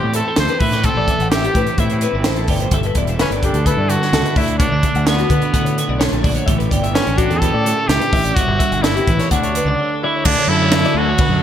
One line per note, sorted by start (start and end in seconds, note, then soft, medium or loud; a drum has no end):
0.00 0.59 E2 medium
0.00 0.22 A2 medium
0.00 1.07 E3 medium
0.00 0.59 C4 medium
0.00 0.14 G4 medium
0.00 0.15 G4 medium
0.00 0.15 D5 medium
0.14 0.28 E4 medium
0.14 0.28 A4 medium
0.14 0.37 A4 medium
0.14 closed hi-hat medium
0.28 0.61 G4 medium
0.28 0.38 C5 medium
0.36 0.47 D2 medium
0.36 0.50 A4 medium
0.36 0.61 C5 medium
0.36 snare loud
0.36 closed hi-hat medium
0.49 0.62 B4 medium
0.49 closed hi-hat soft
0.60 1.78 A2 medium
0.60 0.89 A2 medium
0.60 0.73 E4 medium
0.60 0.86 B4 medium
0.60 0.73 E5 medium
0.60 kick medium
0.60 open hi-hat medium
0.72 2.48 G4 medium
0.72 0.85 D5 medium
0.72 snare soft
0.72 closed hi-hat soft
0.84 1.31 C4 medium
0.84 1.30 A4 loud
0.84 0.97 C5 medium
0.84 kick loud
0.84 closed hi-hat medium
0.96 1.06 A1 medium
0.96 1.09 D5 medium
1.07 2.46 E3 medium
1.07 1.21 E5 medium
1.07 kick medium
1.07 closed hi-hat medium
1.19 1.47 A1 medium
1.19 1.34 F#5 medium
1.19 closed hi-hat soft
1.31 1.54 C4 medium
1.31 1.81 G4 medium
1.31 1.45 E5 medium
1.31 snare loud
1.31 closed hi-hat medium
1.44 1.56 G4 medium
1.44 closed hi-hat soft
1.55 1.65 A2 medium
1.55 2.01 C4 medium
1.55 1.69 B4 medium
1.55 kick medium
1.55 closed hi-hat medium
1.67 1.80 C5 medium
1.67 closed hi-hat soft
1.78 2.46 E2 medium
1.78 2.06 A2 medium
1.78 2.50 E4 medium
1.78 1.91 E5 medium
1.78 kick medium
1.78 closed hi-hat medium
1.90 2.02 C5 medium
1.90 closed hi-hat soft
2.01 2.46 C4 medium
2.01 2.15 B4 medium
2.01 closed hi-hat medium
2.13 2.23 G1 medium
2.13 2.25 D5 medium
2.24 2.46 A1 medium
2.24 2.38 C5 medium
2.24 snare loud
2.24 closed hi-hat medium
2.36 2.49 A4 medium
2.36 closed hi-hat soft
2.48 2.70 G1 medium
2.48 2.72 A2 medium
2.48 2.70 G4 medium
2.48 2.61 D5 medium
2.48 kick medium
2.48 open hi-hat medium
2.60 2.73 C5 medium
2.60 closed hi-hat soft
2.71 2.90 G1 loud
2.71 4.34 G2 medium
2.71 3.42 A4 medium
2.71 2.85 E5 medium
2.71 kick loud
2.71 closed hi-hat medium
2.83 2.97 B4 medium
2.83 closed hi-hat soft
2.95 3.23 E1 medium
2.95 3.65 E4 medium
2.95 3.09 D5 medium
2.95 kick medium
2.95 closed hi-hat medium
3.07 3.20 E5 medium
3.07 closed hi-hat soft
3.19 3.88 D3 medium
3.19 3.31 C#4 medium
3.19 3.32 B4 medium
3.19 snare loud
3.19 closed hi-hat medium
3.31 3.49 G1 medium
3.31 3.44 D5 medium
3.31 closed hi-hat soft
3.43 3.68 D4 medium
3.43 3.55 G4 medium
3.43 4.63 A4 medium
3.43 kick medium
3.43 closed hi-hat medium
3.53 3.72 D2 medium
3.53 3.66 A4 medium
3.53 closed hi-hat soft
3.66 4.12 E4 soft
3.66 3.91 A4 medium
3.66 3.78 B4 medium
3.66 kick medium
3.66 closed hi-hat medium
3.77 3.96 G2 medium
3.77 3.90 D5 medium
3.89 4.34 D3 medium
3.89 4.39 F#4 medium
3.89 4.01 A4 medium
3.89 closed hi-hat medium
4.01 4.13 C#5 medium
4.01 snare soft
4.13 4.22 C#2 medium
4.13 4.34 E4 soft
4.13 4.26 A4 medium
4.13 snare medium
4.13 closed hi-hat medium
4.25 4.37 B4 medium
4.25 closed hi-hat soft
4.36 6.24 D2 medium
4.36 4.64 D2 medium
4.36 4.60 D4 medium
4.36 4.58 E4 medium
4.36 4.49 E5 medium
4.36 kick medium
4.36 open hi-hat medium
4.48 4.60 D5 medium
4.48 closed hi-hat soft
4.59 4.72 B3 medium
4.59 5.08 D4 loud
4.59 4.73 C#5 medium
4.59 kick loud
4.59 closed hi-hat medium
4.72 4.81 D2 medium
4.72 5.31 D4 medium
4.72 4.84 D5 medium
4.83 8.13 D3 medium
4.83 4.96 E5 medium
4.83 kick medium
4.83 closed hi-hat medium
4.95 5.23 D2 medium
4.95 5.08 F#5 medium
4.95 closed hi-hat soft
5.07 6.01 B3 medium
5.07 5.78 F#4 medium
5.07 5.19 D5 medium
5.07 snare loud
5.07 closed hi-hat medium
5.19 5.31 F#4 medium
5.19 closed hi-hat soft
5.30 5.40 D3 medium
5.30 6.23 D4 medium
5.30 5.43 B4 medium
5.30 kick medium
5.30 closed hi-hat medium
5.42 5.55 C#5 medium
5.42 closed hi-hat soft
5.54 6.25 A2 medium
5.54 5.82 D3 medium
5.54 5.66 F#5 medium
5.54 kick medium
5.54 closed hi-hat medium
5.65 5.77 C#5 medium
5.65 closed hi-hat soft
5.77 6.23 F#4 medium
5.77 5.89 B4 medium
5.77 closed hi-hat medium
5.89 6.08 B1 medium
5.89 5.99 D5 medium
6.00 6.12 C#5 medium
6.00 snare loud
6.00 closed hi-hat medium
6.12 6.40 A#1 medium
6.12 6.25 A4 medium
6.12 closed hi-hat soft
6.24 6.48 D2 medium
6.24 6.46 F#4 medium
6.24 6.35 D5 medium
6.24 kick medium
6.24 open hi-hat medium
6.35 6.48 C#5 medium
6.35 closed hi-hat soft
6.46 6.67 A1 loud
6.46 7.66 A2 medium
6.46 6.71 G4 medium
6.46 6.59 E5 medium
6.46 kick loud
6.46 closed hi-hat medium
6.58 6.70 B4 medium
6.58 closed hi-hat soft
6.71 7.00 G1 medium
6.71 7.17 G4 medium
6.71 6.83 D5 medium
6.71 kick medium
6.71 closed hi-hat medium
6.83 6.95 E5 medium
6.83 closed hi-hat soft
6.94 7.19 C#4 medium
6.94 8.33 C#4 medium
6.94 7.07 B4 medium
6.94 snare loud
6.94 closed hi-hat medium
7.07 7.26 A1 medium
7.07 7.19 C#5 medium
7.07 closed hi-hat soft
7.17 7.40 D4 medium
7.17 7.30 F#4 medium
7.17 7.42 G4 medium
7.17 kick medium
7.17 closed hi-hat medium
7.30 7.49 E2 medium
7.30 7.42 A4 medium
7.30 closed hi-hat soft
7.39 7.89 A4 loud
7.39 7.54 B4 medium
7.39 kick medium
7.39 closed hi-hat medium
7.43 8.34 G4 medium
7.54 7.73 A2 medium
7.54 7.66 D5 medium
7.65 8.37 A2 medium
7.65 7.77 A4 medium
7.65 closed hi-hat medium
7.77 7.88 C#5 medium
7.88 7.98 C#2 loud
7.88 8.34 E4 medium
7.88 8.37 G4 loud
7.88 8.00 A4 medium
7.88 snare loud
7.88 closed hi-hat medium
8.00 8.13 B4 medium
8.00 closed hi-hat soft
8.13 8.32 A1 medium
8.13 8.25 E5 medium
8.13 kick medium
8.13 open hi-hat medium
8.25 8.36 D5 medium
8.25 closed hi-hat soft
8.35 8.46 G1 loud
8.35 8.84 G2 medium
8.35 9.32 E4 medium
8.35 8.83 F#4 loud
8.35 8.48 C#5 medium
8.35 kick loud
8.35 closed hi-hat medium
8.48 8.57 G1 medium
8.48 8.59 D5 medium
8.59 9.29 D4 medium
8.59 8.72 E5 medium
8.59 kick medium
8.59 closed hi-hat medium
8.72 9.00 G1 medium
8.72 8.83 F#5 medium
8.72 closed hi-hat soft
8.82 9.07 F#2 medium
8.82 9.30 E4 medium
8.82 8.95 D5 medium
8.82 snare loud
8.82 closed hi-hat medium
8.96 9.09 G4 medium
8.96 closed hi-hat soft
9.08 9.17 A1 medium
9.08 9.31 E2 medium
9.08 9.20 B4 medium
9.08 kick medium
9.08 closed hi-hat medium
9.19 9.31 C#5 medium
9.19 snare soft
9.19 closed hi-hat soft
9.31 9.59 D2 medium
9.31 11.43 D2 medium
9.31 9.97 D4 medium
9.31 10.02 F#4 medium
9.31 9.43 F#5 medium
9.31 kick medium
9.31 closed hi-hat medium
9.43 9.56 C#5 medium
9.43 closed hi-hat soft
9.55 9.66 B3 medium
9.55 9.67 B4 medium
9.55 closed hi-hat medium
9.65 9.75 C#2 medium
9.65 10.25 D4 soft
9.65 9.81 D5 medium
9.79 11.43 D3 medium
9.79 9.91 C#5 medium
9.91 10.02 A4 medium
10.03 10.27 E4 medium
10.03 10.23 F#4 medium
10.03 10.17 D5 medium
10.17 10.28 C#5 medium
10.25 10.35 D2 loud
10.25 10.50 D4 loud
10.25 10.38 A4 loud
10.25 kick loud
10.25 crash loud
10.25 crash medium
10.39 10.50 C#5 medium
10.47 10.85 F#2 loud
10.47 10.99 E4 loud
10.47 10.62 A4 medium
10.62 10.74 C#5 medium
10.72 11.02 D3 medium
10.72 11.03 F#3 medium
10.72 11.03 A3 loud
10.72 11.03 D4 loud
10.72 10.85 A4 medium
10.72 snare loud
10.72 crash medium
10.84 10.96 D5 medium
10.84 snare soft
10.95 11.13 D2 medium
10.95 11.42 F#4 loud
10.95 11.08 A4 medium
11.08 11.20 C#5 medium
11.18 11.32 B4 medium
11.18 kick loud
11.18 crash medium
11.29 11.43 F#2 medium
11.29 11.43 A4 medium